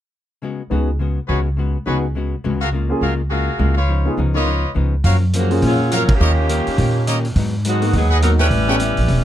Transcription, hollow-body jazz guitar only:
0.42 C#3 G#3 B3 F#4
0.71 C#3 G#3 B3 F#4
0.99 C#3 G#3 B3 F#4
1.29 C#3 G#3 B3 F#4
1.57 C#3 G#3 B3 F#4
1.87 C#3 G#3 B3 F#4
2.15 C#3 G#3 B3 F#4
2.44 C#3 G#3 B3 F#4
2.72 C#3 G#3 A#3 F4
3.02 C#3 G#3 A#3 F4
3.31 C#3 G#3 A#3 F4
3.59 C#3 G#3 A#3 F4
3.88 C#3 F3 B3 D#4
4.17 C#3 F3 B3 D#4
4.45 C#3 F3 B3 D#4
4.75 C#3 F3 B3 D#4
5.04 F#2 F3 A#3 C#4
5.34 F#2 F3 A#3 C#4
5.61 F#2 F3 A#3 C#4
5.91 F#2 F3 A#3 C#4
6.20 D#3 A#3 C#4 G4
6.49 D#3 A#3 C#4 G4
6.78 D#3 A#3 C#4 G4
7.08 D#3 A#3 C#4 G4
7.36 G#2 F#3 B3 D#4
7.65 G#2 F#3 B3 D#4
7.92 G#2 F#3 B3 D#4
8.22 G#2 F#3 B3 D#4
8.50 A2 G3 B3 C#4
8.79 A2 G3 B3 C#4
9.08 A2 G3 B3 C#4

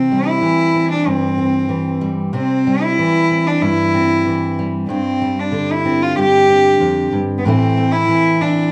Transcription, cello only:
Already playing: C4
0.28 E4
0.92 D4
1.07 C4
2.36 C4
2.83 E4
3.47 D4
3.62 E4
4.90 C4
5.40 D4
5.71 E4
6.03 F4
6.19 G4
7.38 B3
7.45 C4
7.92 E4
8.41 D4

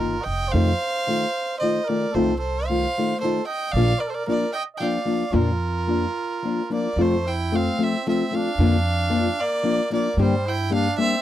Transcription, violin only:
Already playing: A#4
0.24 G5
0.52 F5
1.60 D#5
1.87 D5
2.14 C5
2.40 C5
2.67 F5
3.20 C5
3.47 G5
3.72 F5
4.00 D5
4.10 C5
4.14 D5
4.28 D5
4.53 G5
4.77 F5 G5
5.35 A#4
6.73 D5
7.01 C5
7.28 G5
7.55 F5
7.83 E5
8.08 E5
8.34 F5
9.40 D5
9.93 D5
10.22 C5
10.48 G5
10.74 F5
10.98 E5

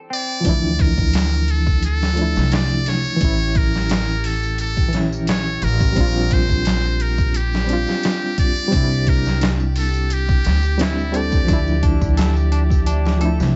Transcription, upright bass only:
0.45 D2
2.36 C2
3.21 A1
4.94 A#1
5.62 A1
5.97 A#1
8.73 C2
10.46 D2
11.49 D2
13.40 C2

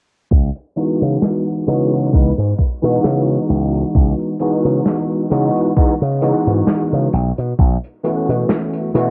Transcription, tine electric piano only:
0.76 E3 G#3 B3 D#4 F#4
1.67 E3 G#3 B3 D#4 F#4
2.13 E3 G#3 B3 D#4 B4
2.82 E3 G#3 B3 D#4 F#4
4.40 E3 G#3 B3 D#4 F#4
5.30 E3 G#3 B3 D#4 F#4
5.76 E3 G#3 B3 D#4 F#4
6.22 E3 G#3 B3 D#4 F#4
8.03 E3 A3 B3 C#4 F#4
8.94 E3 A3 B3 C#4 F#4

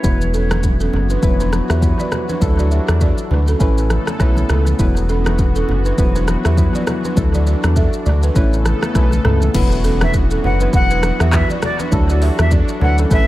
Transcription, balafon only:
0.34 C#4 A4
0.51 D4 B4
0.81 C#4 A4
1.10 D4 B4
1.40 D4 B4
1.70 G4 E5
1.99 F#4 D5
2.29 D4 B4
2.59 F#4 D5
2.71 G4 E5
3.01 F#4 D5
3.31 D4 B4
3.48 C#4 A4
3.61 C#4 A4
4.20 E4 C#5
4.50 C#4 A4
5.09 C#4 A4
5.26 D4 B4
5.56 C#4 A4
5.86 D4 B4
6.15 D4 B4
6.45 G4 E5
6.75 F#4 D5
7.05 D4 B4
7.34 F#4 D5
7.47 F#4 D5
7.77 A4 E5
8.06 F#4 D5
8.23 D4 B4
8.36 E4 C#5
8.95 E4 B4
9.25 C#4 A4
9.84 C#4 A4
10.02 D4 B4
10.31 C#4 A4
10.61 D4 B4
10.91 D4 B4
11.21 G4 E5
11.50 F#4 D5
11.80 D4 B4
12.10 F#4 D5
12.22 G4 E5
12.52 F#4 D5
12.81 D4 B4
12.99 C#4 A4
13.11 C#4 A4

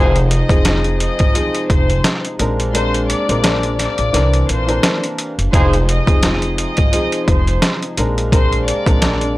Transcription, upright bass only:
Already playing: F1
0.50 F1
1.20 G#1
1.70 F1
2.40 A#1
3.29 A#1
3.99 A#1
4.14 C2
4.49 A#1
5.38 F#1
5.53 F1
6.08 F1
6.78 G#1
7.28 F1
7.98 A#1
8.87 A#1

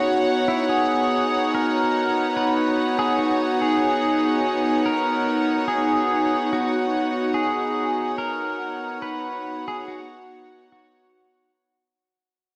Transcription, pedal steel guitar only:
Already playing: F#4
0.48 E4
0.69 G#4
1.55 A#4
2.37 B4
2.99 G#4
3.19 F#4
3.61 G#4
4.86 A#4
5.68 G#4
6.53 F#4
7.34 G#4
8.18 A#4
9.02 B4
9.68 G#4
9.88 F#4
10.72 F#4

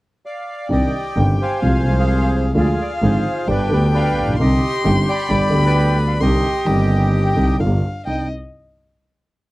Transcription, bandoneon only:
0.26 D5 F5
0.72 G4 D#5
1.19 G5
1.42 C5 F5 G#5
1.99 G#4 C5 F5
2.35 C5
2.56 F4 G#4 D5
2.82 D5
3.03 F4 G#4 C5
3.50 D4 G4 B4
3.73 B4
3.95 B4 D5 F5
4.40 G4 D#5
4.86 G5
5.09 D5 G5 B5
5.66 B4 D5 G5
6.07 F5
6.22 G4 D#5
8.05 G5

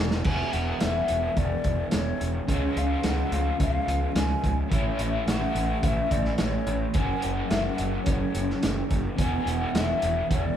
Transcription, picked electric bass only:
Already playing: E1
0.25 E1
0.54 E1
0.83 E1
1.10 E1
1.37 E1
1.65 E1
1.94 E1
2.21 E1
2.48 C#2
2.76 C#2
3.04 C#2
3.32 C#2
3.60 C#2
3.87 C#2
4.15 C#2
4.44 C#2
4.72 A1
4.99 A1
5.27 A1
5.55 A1
5.83 A1
6.11 A1
6.39 A1
6.67 A1
6.95 F#1
7.24 F#1
7.51 F#1
7.79 F#1
8.07 F#1
8.35 F#1
8.64 F#1
8.91 F#1
9.19 E1
9.46 E1
9.75 E1
10.03 E1
10.31 E1

